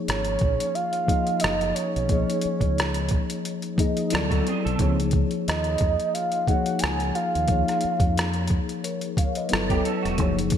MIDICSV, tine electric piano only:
0, 0, Header, 1, 2, 480
1, 0, Start_track
1, 0, Key_signature, 6, "major"
1, 0, Tempo, 674157
1, 1487, Time_signature, 4, 2, 24, 8
1, 7531, End_track
2, 0, Start_track
2, 0, Title_t, "Tine electric piano"
2, 0, Program_c, 0, 4
2, 0, Control_c, 0, 64, 127
2, 0, Note_on_c, 0, 53, 69
2, 0, Note_on_c, 0, 58, 68
2, 0, Note_on_c, 0, 63, 66
2, 0, Note_on_c, 0, 68, 67
2, 0, Note_on_c, 0, 73, 83
2, 358, Note_off_c, 0, 53, 0
2, 361, Note_off_c, 0, 58, 0
2, 364, Note_off_c, 0, 63, 0
2, 369, Note_off_c, 0, 68, 0
2, 373, Note_off_c, 0, 73, 0
2, 756, Note_on_c, 0, 53, 63
2, 763, Note_on_c, 0, 58, 55
2, 768, Note_on_c, 0, 63, 58
2, 777, Note_on_c, 0, 68, 54
2, 784, Note_on_c, 0, 75, 64
2, 1365, Note_off_c, 0, 53, 0
2, 1369, Note_off_c, 0, 58, 0
2, 1372, Note_off_c, 0, 63, 0
2, 1376, Note_off_c, 0, 68, 0
2, 1380, Note_off_c, 0, 75, 0
2, 1479, Note_on_c, 0, 53, 60
2, 1488, Note_on_c, 0, 58, 57
2, 1493, Note_on_c, 0, 63, 55
2, 1503, Note_on_c, 0, 68, 56
2, 1509, Note_on_c, 0, 73, 68
2, 2281, Note_off_c, 0, 53, 0
2, 2285, Note_off_c, 0, 58, 0
2, 2288, Note_off_c, 0, 63, 0
2, 2292, Note_off_c, 0, 68, 0
2, 2295, Note_off_c, 0, 73, 0
2, 2679, Note_on_c, 0, 53, 68
2, 2687, Note_on_c, 0, 58, 73
2, 2694, Note_on_c, 0, 63, 75
2, 2702, Note_on_c, 0, 68, 72
2, 2707, Note_on_c, 0, 75, 84
2, 2912, Note_off_c, 0, 53, 0
2, 2921, Note_on_c, 0, 53, 68
2, 2927, Note_off_c, 0, 58, 0
2, 2929, Note_on_c, 0, 59, 67
2, 2931, Note_off_c, 0, 63, 0
2, 2934, Note_on_c, 0, 64, 83
2, 2935, Note_off_c, 0, 68, 0
2, 2937, Note_off_c, 0, 75, 0
2, 2937, Control_c, 0, 64, 0
2, 2942, Note_on_c, 0, 69, 77
2, 2950, Note_on_c, 0, 74, 91
2, 2966, Note_on_c, 0, 54, 83
2, 2975, Note_off_c, 0, 53, 0
2, 3044, Control_c, 0, 64, 127
2, 3332, Note_off_c, 0, 59, 0
2, 3334, Note_off_c, 0, 64, 0
2, 3338, Note_off_c, 0, 69, 0
2, 3342, Note_off_c, 0, 74, 0
2, 3350, Note_off_c, 0, 54, 0
2, 3400, Note_on_c, 0, 52, 55
2, 3409, Note_on_c, 0, 58, 66
2, 3415, Note_on_c, 0, 63, 64
2, 3417, Control_c, 0, 64, 0
2, 3424, Note_on_c, 0, 68, 67
2, 3430, Note_on_c, 0, 73, 81
2, 3448, Note_on_c, 0, 53, 79
2, 3454, Note_off_c, 0, 52, 0
2, 3553, Control_c, 0, 64, 127
2, 4206, Note_off_c, 0, 58, 0
2, 4209, Note_off_c, 0, 63, 0
2, 4213, Note_off_c, 0, 68, 0
2, 4216, Note_off_c, 0, 73, 0
2, 4225, Note_off_c, 0, 53, 0
2, 4602, Note_on_c, 0, 53, 64
2, 4609, Note_on_c, 0, 58, 59
2, 4618, Note_on_c, 0, 63, 54
2, 4624, Note_on_c, 0, 68, 58
2, 4631, Note_on_c, 0, 73, 69
2, 5209, Note_off_c, 0, 53, 0
2, 5212, Note_off_c, 0, 58, 0
2, 5216, Note_off_c, 0, 63, 0
2, 5219, Note_off_c, 0, 68, 0
2, 5223, Note_off_c, 0, 73, 0
2, 5319, Note_on_c, 0, 53, 60
2, 5327, Note_on_c, 0, 58, 53
2, 5334, Note_on_c, 0, 63, 59
2, 5343, Note_on_c, 0, 68, 57
2, 5350, Note_on_c, 0, 73, 62
2, 6121, Note_off_c, 0, 53, 0
2, 6125, Note_off_c, 0, 58, 0
2, 6128, Note_off_c, 0, 63, 0
2, 6132, Note_off_c, 0, 68, 0
2, 6136, Note_off_c, 0, 73, 0
2, 6293, Note_on_c, 0, 73, 56
2, 6297, Note_on_c, 0, 70, 45
2, 6518, Note_off_c, 0, 73, 0
2, 6520, Note_off_c, 0, 70, 0
2, 6535, Note_on_c, 0, 77, 65
2, 6539, Note_on_c, 0, 73, 52
2, 6656, Note_off_c, 0, 77, 0
2, 6659, Note_off_c, 0, 73, 0
2, 6666, Note_on_c, 0, 75, 58
2, 6671, Note_on_c, 0, 71, 50
2, 6759, Note_on_c, 0, 54, 72
2, 6766, Note_on_c, 0, 59, 69
2, 6774, Note_on_c, 0, 64, 73
2, 6777, Control_c, 0, 64, 0
2, 6783, Note_on_c, 0, 69, 77
2, 6790, Note_on_c, 0, 73, 77
2, 6879, Control_c, 0, 64, 127
2, 6891, Note_off_c, 0, 75, 0
2, 6893, Note_off_c, 0, 71, 0
2, 7167, Note_off_c, 0, 54, 0
2, 7170, Note_off_c, 0, 59, 0
2, 7174, Note_off_c, 0, 64, 0
2, 7179, Note_off_c, 0, 69, 0
2, 7182, Note_off_c, 0, 73, 0
2, 7241, Note_on_c, 0, 53, 75
2, 7248, Note_on_c, 0, 58, 64
2, 7257, Control_c, 0, 64, 0
2, 7257, Note_on_c, 0, 63, 63
2, 7264, Note_on_c, 0, 68, 61
2, 7271, Note_on_c, 0, 73, 79
2, 7360, Control_c, 0, 64, 127
2, 7531, Note_off_c, 0, 53, 0
2, 7531, Note_off_c, 0, 58, 0
2, 7531, Note_off_c, 0, 63, 0
2, 7531, Note_off_c, 0, 68, 0
2, 7531, Note_off_c, 0, 73, 0
2, 7531, End_track
0, 0, End_of_file